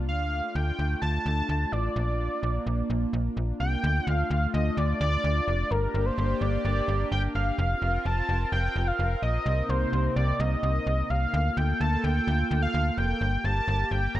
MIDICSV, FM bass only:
0, 0, Header, 1, 2, 480
1, 0, Start_track
1, 0, Tempo, 468750
1, 87, Time_signature, 4, 2, 24, 8
1, 14539, End_track
2, 0, Start_track
2, 0, Title_t, "FM bass"
2, 0, Program_c, 0, 39
2, 87, Note_on_c, 0, 38, 101
2, 423, Note_off_c, 0, 38, 0
2, 566, Note_on_c, 0, 38, 100
2, 735, Note_off_c, 0, 38, 0
2, 808, Note_on_c, 0, 38, 96
2, 976, Note_off_c, 0, 38, 0
2, 1046, Note_on_c, 0, 38, 100
2, 1214, Note_off_c, 0, 38, 0
2, 1287, Note_on_c, 0, 38, 102
2, 1455, Note_off_c, 0, 38, 0
2, 1526, Note_on_c, 0, 38, 106
2, 1695, Note_off_c, 0, 38, 0
2, 1768, Note_on_c, 0, 33, 95
2, 1936, Note_off_c, 0, 33, 0
2, 2007, Note_on_c, 0, 34, 106
2, 2343, Note_off_c, 0, 34, 0
2, 2488, Note_on_c, 0, 34, 100
2, 2655, Note_off_c, 0, 34, 0
2, 2729, Note_on_c, 0, 34, 103
2, 2896, Note_off_c, 0, 34, 0
2, 2968, Note_on_c, 0, 34, 105
2, 3136, Note_off_c, 0, 34, 0
2, 3207, Note_on_c, 0, 34, 105
2, 3375, Note_off_c, 0, 34, 0
2, 3449, Note_on_c, 0, 34, 97
2, 3616, Note_off_c, 0, 34, 0
2, 3688, Note_on_c, 0, 36, 90
2, 3856, Note_off_c, 0, 36, 0
2, 3929, Note_on_c, 0, 38, 114
2, 4096, Note_off_c, 0, 38, 0
2, 4168, Note_on_c, 0, 38, 109
2, 4336, Note_off_c, 0, 38, 0
2, 4408, Note_on_c, 0, 38, 107
2, 4576, Note_off_c, 0, 38, 0
2, 4649, Note_on_c, 0, 38, 106
2, 4816, Note_off_c, 0, 38, 0
2, 4888, Note_on_c, 0, 38, 108
2, 5055, Note_off_c, 0, 38, 0
2, 5127, Note_on_c, 0, 38, 113
2, 5295, Note_off_c, 0, 38, 0
2, 5368, Note_on_c, 0, 38, 103
2, 5536, Note_off_c, 0, 38, 0
2, 5608, Note_on_c, 0, 29, 99
2, 5776, Note_off_c, 0, 29, 0
2, 5849, Note_on_c, 0, 31, 106
2, 6016, Note_off_c, 0, 31, 0
2, 6087, Note_on_c, 0, 31, 107
2, 6255, Note_off_c, 0, 31, 0
2, 6328, Note_on_c, 0, 31, 108
2, 6496, Note_off_c, 0, 31, 0
2, 6566, Note_on_c, 0, 31, 107
2, 6734, Note_off_c, 0, 31, 0
2, 6808, Note_on_c, 0, 31, 108
2, 6976, Note_off_c, 0, 31, 0
2, 7046, Note_on_c, 0, 31, 105
2, 7215, Note_off_c, 0, 31, 0
2, 7287, Note_on_c, 0, 31, 105
2, 7455, Note_off_c, 0, 31, 0
2, 7527, Note_on_c, 0, 31, 91
2, 7695, Note_off_c, 0, 31, 0
2, 7766, Note_on_c, 0, 29, 116
2, 7935, Note_off_c, 0, 29, 0
2, 8007, Note_on_c, 0, 29, 100
2, 8175, Note_off_c, 0, 29, 0
2, 8248, Note_on_c, 0, 29, 103
2, 8416, Note_off_c, 0, 29, 0
2, 8488, Note_on_c, 0, 29, 104
2, 8656, Note_off_c, 0, 29, 0
2, 8727, Note_on_c, 0, 29, 108
2, 8895, Note_off_c, 0, 29, 0
2, 8967, Note_on_c, 0, 29, 103
2, 9135, Note_off_c, 0, 29, 0
2, 9208, Note_on_c, 0, 29, 109
2, 9376, Note_off_c, 0, 29, 0
2, 9446, Note_on_c, 0, 34, 96
2, 9615, Note_off_c, 0, 34, 0
2, 9685, Note_on_c, 0, 36, 107
2, 9854, Note_off_c, 0, 36, 0
2, 9925, Note_on_c, 0, 36, 105
2, 10094, Note_off_c, 0, 36, 0
2, 10166, Note_on_c, 0, 36, 99
2, 10335, Note_off_c, 0, 36, 0
2, 10407, Note_on_c, 0, 36, 104
2, 10575, Note_off_c, 0, 36, 0
2, 10647, Note_on_c, 0, 36, 118
2, 10815, Note_off_c, 0, 36, 0
2, 10886, Note_on_c, 0, 36, 102
2, 11054, Note_off_c, 0, 36, 0
2, 11126, Note_on_c, 0, 36, 98
2, 11295, Note_off_c, 0, 36, 0
2, 11368, Note_on_c, 0, 36, 87
2, 11536, Note_off_c, 0, 36, 0
2, 11608, Note_on_c, 0, 38, 110
2, 11776, Note_off_c, 0, 38, 0
2, 11847, Note_on_c, 0, 38, 107
2, 12015, Note_off_c, 0, 38, 0
2, 12088, Note_on_c, 0, 38, 107
2, 12256, Note_off_c, 0, 38, 0
2, 12329, Note_on_c, 0, 38, 106
2, 12496, Note_off_c, 0, 38, 0
2, 12569, Note_on_c, 0, 38, 106
2, 12736, Note_off_c, 0, 38, 0
2, 12809, Note_on_c, 0, 38, 112
2, 12977, Note_off_c, 0, 38, 0
2, 13048, Note_on_c, 0, 38, 104
2, 13216, Note_off_c, 0, 38, 0
2, 13288, Note_on_c, 0, 29, 102
2, 13456, Note_off_c, 0, 29, 0
2, 13527, Note_on_c, 0, 31, 106
2, 13695, Note_off_c, 0, 31, 0
2, 13767, Note_on_c, 0, 31, 106
2, 13935, Note_off_c, 0, 31, 0
2, 14005, Note_on_c, 0, 31, 111
2, 14174, Note_off_c, 0, 31, 0
2, 14247, Note_on_c, 0, 31, 101
2, 14415, Note_off_c, 0, 31, 0
2, 14488, Note_on_c, 0, 31, 106
2, 14539, Note_off_c, 0, 31, 0
2, 14539, End_track
0, 0, End_of_file